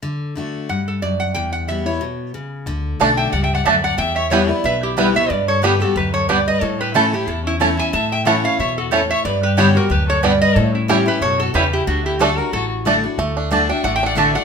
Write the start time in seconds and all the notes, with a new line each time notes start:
0.02 D3
0.35 D3 A3 D4 F#4
0.69 G2 F#5
0.88 A4
1.02 F#2 D5
1.20 F#5
1.34 E2 G5
1.53 F#5
1.68 E3 G3 B3 E4 E5
1.86 B3 E4 C#5
2.01 B2
2.34 C#3
2.66 D2 D3
3.00 B1 D3 A3 D4 F#4 D5 A5
3.17 E5 G5
3.32 C#2 G2 D5 F#5
3.43 E5 G5
3.55 D5 F#5
3.65 D2 F#2 A3 D4 F#4 A4 D5 E5 A5
3.83 D5 F#5
3.98 E2 E5 G5
4.16 C#5 E5
4.30 E3 G3 B3 E4 G4 B4 C#5 G5
4.48 B3 E4 B4 D5
4.64 B1 B2 B4 E5
4.83 E4 G4
4.97 E3 G3 B3 E4 G4 B4 G5
5.14 B3 E4 C#5 E5
5.29 G2 B4 D5
5.48 A4 C#5
5.62 D3 G3 B3 D4 G4 B4 D5 G5
5.80 B3 F#4 G4 A4
5.95 D2 F#2 G4 B4
6.13 A4 C#5
6.29 G2 G3 B3 D4 G4 B4 D5 G5
6.47 B4 D#5
6.61 A2 A4 C#5
6.80 G4 B4
6.94 E3 A3 C#4 E4 A4 C#5 A5
7.12 C#4 E4 G4
7.27 E2 E4 A4
7.44 C#4 E4
7.60 E3 A3 C#4 E4 C#5 A5
7.77 C#4 E4 E5 G#5
7.93 A2 E5 A5
8.11 E5 G5
8.25 E3 A3 C#4 E4 C#5 F#5 A5
8.44 C#4 E4 C#5 F5
8.58 E2 B2 C#5 E5
8.78 F#4 A4
8.91 A2 A3 C#4 E4 A4 C#5 A5
9.11 C#5 E5
9.25 G2 B4 D5
9.43 G4 B4
9.57 D3 G3 B3 D4 G4 C#5 D5 G5
9.75 B3 F#4 G4 A#4
9.90 D2 F#2 G4 B4
10.08 A4 C#5
10.23 G2 G3 B3 D4 G4 B4 D5 G5
10.40 B4 D#5
10.56 A2 A4 C#5
10.74 C#4 E4
10.88 E3 G3 A3 C#4 E4 G4 C#5 G5
11.06 C#4 E4 G4 B4
11.21 F#2 B2 A4 C#5
11.39 F#4 A4
11.54 E2 C#3 G3 A3 C#4 E4 G4 B4 C#5 G5
11.73 E4 G4
11.87 D2 D3 D4 F#4
12.05 E4 G4
12.19 D3 A3 D4 F#4 A4 D5 A5
12.38 D4 F#4 A#4
12.53 A1 A2 F#4 A4
12.85 D3 A3 D4 F#4 D5 A5
13.03 D4 F#4
13.18 D2 D3 A3
13.37 D4
13.51 D3 A3 D4 F#4 D5 A5
13.69 D4 F#4 E5 G5
13.84 A1 A2 A3 D5 F#5
13.96 E5 G5
14.03 D4 F#5
14.07 D5
14.15 D3 A3 D4 F#4 A4 D5 E5 A5
14.35 D4 F#4 D5 F#5